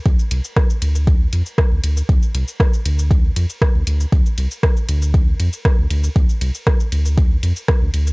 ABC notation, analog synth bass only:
X:1
M:4/4
L:1/16
Q:1/4=118
K:Dm
V:1 name="Analog synth bass" clef=bass
D,, z C,, z3 D,,4 F,, z2 D,, D,, z | D,, z C,, z3 D,,4 F,, z2 D,, D,, z | D,, z C,, z3 D,,4 F,, z2 D,, D,, z | D,, z C,, z3 D,,4 F,, z2 D,, D,, z |]